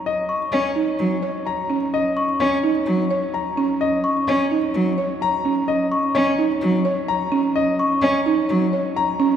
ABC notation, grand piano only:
X:1
M:4/4
L:1/8
Q:1/4=128
K:Ebm
V:1 name="Grand piano"
e z d z3 b z | e z d z3 b z | e z d z3 b z | e z d z3 b z |
e z d z3 b z |]